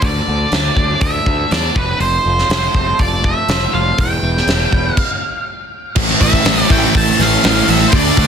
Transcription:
0.00 0.19 D2 medium
0.00 0.27 D3 medium
0.00 0.52 A3 soft
0.00 kick loud
0.00 open hi-hat soft
0.04 0.98 D5 medium
0.28 0.45 D2 medium
0.28 1.01 D3 medium
0.52 0.69 D2 medium
0.52 1.27 A3 medium
0.52 snare medium
0.52 open hi-hat soft
0.76 0.93 D2 medium
0.76 1.51 D4 medium
0.76 kick medium
1.01 1.18 D2 medium
1.01 1.76 D3 medium
1.01 1.52 E5 medium
1.01 kick medium
1.01 open hi-hat soft
1.26 1.43 D2 medium
1.26 1.77 A3 medium
1.26 kick medium
1.51 1.68 E2 medium
1.51 1.76 D4 medium
1.51 1.77 D5 medium
1.51 snare medium
1.51 open hi-hat soft
1.76 1.93 F1 medium
1.76 2.00 F2 medium
1.76 2.00 B4 medium
1.76 kick medium
2.00 2.17 F1 medium
2.00 3.25 F2 medium
2.00 3.00 C5 medium
2.00 open hi-hat soft
2.26 2.42 F1 medium
2.26 3.00 F3 medium
2.38 snare soft
2.49 2.67 F1 medium
2.49 3.24 A3 medium
2.49 snare loud
2.49 open hi-hat soft
2.74 2.92 F1 medium
2.74 3.48 C4 medium
2.74 kick medium
2.99 3.33 F1 medium
2.99 4.00 F3 medium
2.99 3.26 D5 medium
2.99 kick medium
2.99 open hi-hat soft
3.24 3.99 A3 medium
3.24 3.74 E5 medium
3.24 kick medium
3.48 3.66 F1 medium
3.48 3.99 C4 medium
3.48 snare loud
3.48 open hi-hat soft
3.73 3.91 F1 medium
3.73 3.99 F4 medium
3.73 4.00 F5 medium
3.98 4.16 E1 medium
3.98 4.98 E2 medium
3.98 4.96 G5 medium
3.98 kick medium
3.98 open hi-hat soft
4.23 4.40 E1 medium
4.23 4.98 E3 medium
4.37 snare soft
4.47 4.64 E1 medium
4.47 4.98 G3 medium
4.47 snare loud
4.47 open hi-hat soft
4.72 4.90 E1 medium
4.72 4.98 B3 medium
4.72 kick medium
4.96 5.44 F5 medium
4.96 kick medium
4.96 crash medium
5.95 6.12 A1 medium
5.95 6.19 A2 loud
5.95 7.91 E3 medium
5.95 6.20 E3 loud
5.95 6.22 A3 loud
5.95 7.91 C4 medium
5.95 8.27 A4 medium
5.95 kick loud
5.95 crash loud
6.10 snare soft
6.21 6.37 A1 loud
6.21 6.44 A2 medium
6.21 6.45 E3 loud
6.21 6.46 A3 loud
6.21 6.71 E5 medium
6.21 kick medium
6.21 open hi-hat medium
6.33 kick medium
6.45 6.61 A1 loud
6.45 6.69 A2 loud
6.45 6.70 E3 medium
6.45 6.71 A3 loud
6.45 snare loud
6.45 open hi-hat medium
6.70 6.86 A1 medium
6.70 6.94 A2 medium
6.70 6.95 E3 loud
6.70 6.96 A3 loud
6.70 6.96 G5 loud
6.70 kick medium
6.70 open hi-hat medium
6.95 7.11 A1 loud
6.95 7.19 A2 medium
6.95 7.19 E3 medium
6.95 7.20 A3 medium
6.95 7.21 A5 loud
6.95 kick loud
6.95 open hi-hat medium
7.19 7.35 A1 medium
7.19 7.43 A2 medium
7.19 7.43 E3 loud
7.19 7.45 A3 loud
7.19 7.69 F5 medium
7.19 snare soft
7.19 open hi-hat medium
7.44 7.61 A1 medium
7.44 7.68 A2 loud
7.44 7.68 E3 medium
7.44 7.69 A3 loud
7.44 snare loud
7.44 open hi-hat medium
7.68 7.84 A1 loud
7.68 7.92 A2 medium
7.68 7.92 E3 medium
7.68 7.93 A3 medium
7.68 7.86 E5 loud
7.68 open hi-hat medium
7.88 7.94 C5 medium
7.92 8.09 D2 loud
7.92 8.17 D3 loud
7.92 8.18 A3 medium
7.92 8.17 D4 loud
7.92 8.27 D4 medium
7.92 8.27 F#4 medium
7.92 8.27 D5 medium
7.92 kick loud
7.92 open hi-hat medium
8.17 8.27 D2 loud
8.17 8.27 D3 medium
8.17 8.27 A3 loud
8.17 8.27 D4 loud
8.17 kick loud
8.17 open hi-hat medium

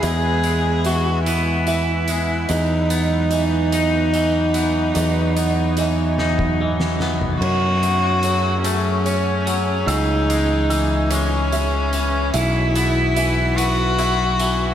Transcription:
0.00 2.08 E2 soft
0.00 2.45 E2 medium
0.00 0.85 E3 soft
0.00 0.43 G#3 soft
0.00 2.45 G#3 medium
0.00 1.27 B3 soft
0.00 2.45 B3 medium
0.00 2.45 E4 medium
0.00 4.91 B4 medium
0.00 0.84 E5 medium
0.00 closed hi-hat soft
0.05 0.87 G#4 medium
0.44 2.08 G#3 soft
0.44 closed hi-hat soft
0.85 1.67 E3 soft
0.85 1.24 F#4 medium
0.85 1.66 E5 soft
0.85 closed hi-hat soft
1.25 2.90 B3 soft
1.25 2.50 E4 medium
1.25 closed hi-hat medium
1.67 2.50 E3 soft
1.67 2.49 E5 medium
1.67 closed hi-hat soft
2.08 2.50 G#3 soft
2.08 closed hi-hat soft
2.48 4.92 E2 medium
2.48 4.55 E2 soft
2.48 7.38 F#3 medium
2.48 7.37 B3 medium
2.48 7.37 D#4 medium
2.48 6.59 D#4 medium
2.48 3.29 D#5 medium
2.48 closed hi-hat soft
2.90 4.53 B3 soft
2.90 closed hi-hat soft
3.31 4.13 E3 soft
3.31 4.11 D#5 medium
3.31 closed hi-hat soft
3.72 5.78 D#4 soft
3.72 closed hi-hat medium
4.13 5.78 E3 soft
4.13 4.93 D#5 medium
4.13 closed hi-hat soft
4.54 5.35 B3 medium
4.54 closed hi-hat soft
4.94 7.38 E2 medium
4.94 7.01 E2 medium
4.94 7.39 C#5 medium
4.94 5.76 D#5 medium
4.94 closed hi-hat medium
5.37 7.01 B3 soft
5.37 closed hi-hat soft
5.77 6.60 E3 medium
5.77 6.59 D#5 medium
5.77 closed hi-hat soft
6.18 7.42 D#4 medium
6.18 snare soft
6.39 kick soft
6.60 7.43 E3 soft
6.60 7.42 D#5 medium
6.80 snare soft
7.00 7.42 B3 soft
7.00 snare medium
7.21 floor tom medium
7.39 9.84 F#2 medium
7.39 9.85 F#3 medium
7.39 9.84 A3 medium
7.39 12.30 C#4 medium
7.39 8.60 F#4 medium
7.39 12.29 G#4 medium
7.39 8.22 C#5 medium
7.39 crash medium
7.43 9.48 F#2 soft
7.83 8.64 A3 soft
7.83 closed hi-hat soft
8.23 9.45 F#3 soft
8.23 9.04 C#5 medium
8.23 closed hi-hat soft
8.63 9.88 A3 medium
8.63 9.88 C#4 medium
8.63 closed hi-hat medium
9.05 9.88 C#4 soft
9.05 9.88 C#5 medium
9.05 closed hi-hat soft
9.47 9.88 F#3 soft
9.47 closed hi-hat soft
9.86 12.30 C#2 medium
9.86 11.93 C#3 medium
9.86 12.31 E3 medium
9.86 11.12 D#4 medium
9.86 10.68 E6 medium
9.86 closed hi-hat medium
10.30 11.12 G#3 soft
10.30 closed hi-hat medium
10.70 11.93 E3 medium
10.70 11.52 E6 medium
10.70 closed hi-hat soft
11.10 12.35 G#3 medium
11.10 12.35 C#4 medium
11.10 closed hi-hat medium
11.53 12.32 E5 medium
11.53 closed hi-hat soft
11.93 13.17 E3 soft
11.93 closed hi-hat soft
12.34 14.74 B1 medium
12.34 14.40 B2 soft
12.34 14.74 F#3 medium
12.34 14.74 B3 medium
12.34 13.59 E4 medium
12.34 14.74 E4 medium
12.34 14.74 B4 medium
12.34 13.15 E5 medium
12.34 closed hi-hat medium
12.75 13.56 B3 soft
12.75 closed hi-hat medium
13.16 14.39 E3 soft
13.16 13.97 E5 medium
13.16 closed hi-hat soft
13.57 14.74 B3 medium
13.57 14.74 F#4 medium
13.57 closed hi-hat medium
13.99 14.74 E4 medium
13.99 14.74 E5 medium
13.99 closed hi-hat soft
14.40 14.74 E3 medium
14.40 closed hi-hat soft

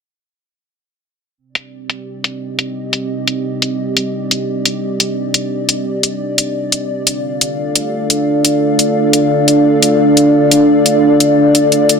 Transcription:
1.38 7.40 C4 medium
1.49 7.91 G4 medium
1.49 12.00 D5 medium
1.55 closed hi-hat medium
1.90 closed hi-hat medium
2.14 6.90 D#5 medium
2.24 closed hi-hat medium
2.59 closed hi-hat medium
2.93 closed hi-hat medium
3.28 closed hi-hat medium
3.62 closed hi-hat medium
3.97 closed hi-hat medium
4.31 closed hi-hat medium
4.65 closed hi-hat medium
5.00 closed hi-hat medium
5.34 closed hi-hat medium
5.69 closed hi-hat medium
6.03 closed hi-hat medium
6.38 closed hi-hat medium
6.72 closed hi-hat medium
6.89 12.00 D4 medium
7.05 12.00 F5 medium
7.05 closed hi-hat medium
7.32 12.00 A4 medium
7.41 closed hi-hat medium
7.75 closed hi-hat medium
8.10 closed hi-hat medium
8.45 closed hi-hat medium
8.79 closed hi-hat medium
9.13 closed hi-hat medium
9.48 closed hi-hat medium
9.82 closed hi-hat medium
10.17 closed hi-hat medium
10.51 closed hi-hat medium
10.86 closed hi-hat medium
11.20 closed hi-hat medium
11.55 closed hi-hat medium
11.72 closed hi-hat soft
11.89 closed hi-hat medium

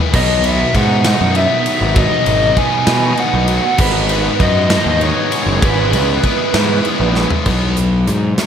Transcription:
0.00 0.12 E3 medium
0.00 0.12 G#3 medium
0.00 0.16 B3 medium
0.00 0.13 E4 medium
0.14 0.63 B1 medium
0.14 1.07 B2 medium
0.14 0.73 D#3 medium
0.14 0.47 F#3 loud
0.14 0.46 B3 loud
0.14 0.44 D#4 loud
0.14 0.46 D#5 loud
0.14 kick loud
0.14 crash loud
0.44 0.75 F#3 medium
0.44 0.75 B3 medium
0.44 0.76 D#4 medium
0.44 0.74 E5 loud
0.44 ride medium
0.74 1.12 G#2 loud
0.74 1.05 D#3 medium
0.74 1.05 F#3 medium
0.74 1.05 B3 medium
0.74 1.04 D#4 medium
0.74 1.36 F#5 loud
0.74 kick medium
0.74 ride medium
1.04 1.67 B2 medium
1.04 1.33 D#3 medium
1.04 1.34 F#3 medium
1.04 1.36 B3 medium
1.04 1.37 D#4 loud
1.04 snare loud
1.04 ride loud
1.21 1.45 F#2 medium
1.35 1.95 D#3 medium
1.35 1.95 F#3 medium
1.35 1.97 B3 medium
1.35 1.98 D#4 medium
1.35 1.93 E5 loud
1.35 ride medium
1.66 3.18 F#3 medium
1.66 ride medium
1.81 2.06 G#1 loud
1.95 2.57 B2 medium
1.95 2.55 D#3 loud
1.95 2.27 F#3 medium
1.95 2.27 B3 loud
1.95 2.25 D#4 loud
1.95 2.58 D#5 loud
1.95 kick loud
1.95 ride loud
2.26 2.52 G#1 loud
2.26 2.56 F#3 medium
2.26 2.58 B3 medium
2.26 2.59 D#4 medium
2.26 ride medium
2.56 2.89 D#3 medium
2.56 2.88 F#3 medium
2.56 2.88 B3 medium
2.56 2.86 D#4 medium
2.56 3.15 G#5 loud
2.56 kick medium
2.56 ride medium
2.87 3.12 B2 medium
2.87 3.50 B2 medium
2.87 3.17 D#3 medium
2.87 3.18 F#3 medium
2.87 3.19 B3 medium
2.87 3.19 D#4 loud
2.87 snare loud
2.87 ride loud
3.17 3.77 D#3 medium
3.17 3.78 F#3 medium
3.17 3.80 B3 medium
3.17 3.78 D#4 medium
3.17 3.76 F#5 loud
3.17 ride medium
3.34 3.58 B1 medium
3.48 3.79 F#3 medium
3.48 ride medium
3.78 4.29 G#1 loud
3.78 4.73 G#2 medium
3.78 4.38 D#3 loud
3.78 4.12 G#3 loud
3.78 4.11 B3 loud
3.78 4.08 D#4 loud
3.78 4.42 B4 loud
3.78 kick loud
3.78 crash loud
4.09 4.40 G#3 medium
4.09 4.42 B3 medium
4.09 4.41 D#4 medium
4.09 ride medium
4.39 4.77 F#2 loud
4.39 4.71 D#3 medium
4.39 4.71 G#3 medium
4.39 4.71 B3 medium
4.39 4.70 D#4 medium
4.39 5.03 D#5 loud
4.39 kick medium
4.39 ride medium
4.70 5.33 G#2 medium
4.70 5.00 D#3 medium
4.70 5.01 G#3 medium
4.70 5.03 B3 loud
4.70 5.03 D#4 medium
4.70 snare loud
4.70 ride loud
4.86 5.11 D#2 loud
5.01 5.61 D#3 medium
5.01 5.61 G#3 medium
5.01 5.64 B3 medium
5.01 5.62 D#4 medium
5.01 5.64 C#5 loud
5.01 ride medium
5.32 5.62 G#3 medium
5.32 ride medium
5.46 5.59 F#1 loud
5.62 5.94 G#1 loud
5.62 6.23 G#2 loud
5.62 6.22 E3 loud
5.62 5.94 G#3 loud
5.62 5.93 B3 loud
5.62 5.91 E4 loud
5.62 6.82 B4 loud
5.62 kick loud
5.62 ride loud
5.92 6.18 C#2 medium
5.92 6.23 G#3 medium
5.92 6.24 B3 medium
5.92 6.24 E4 medium
5.92 ride medium
6.23 6.55 E3 medium
6.23 6.54 G#3 medium
6.23 6.53 B3 medium
6.23 6.53 E4 medium
6.23 kick medium
6.23 ride medium
6.54 6.79 G#2 medium
6.54 7.17 G#2 medium
6.54 6.83 E3 medium
6.54 6.84 G#3 medium
6.54 6.84 B3 medium
6.54 6.86 E4 loud
6.54 snare loud
6.54 ride medium
6.84 7.44 E3 medium
6.84 7.44 G#3 medium
6.84 7.45 B3 medium
6.84 7.45 E4 medium
6.84 ride medium
7.00 7.25 A#1 medium
7.15 7.46 G#3 medium
7.15 snare medium
7.30 floor tom medium
7.46 8.09 B1 medium
7.46 7.75 B2 medium
7.46 7.75 F#3 medium
7.46 7.76 B3 medium
7.46 kick medium
7.46 crash medium
7.77 8.04 B2 medium
7.77 8.04 F#3 medium
7.77 closed hi-hat medium
8.07 8.33 G#2 medium
8.07 8.35 B2 medium
8.07 8.35 F#3 medium
8.07 closed hi-hat soft
8.38 8.46 B2 medium
8.38 8.46 F#3 medium
8.38 snare medium
8.38 closed hi-hat medium

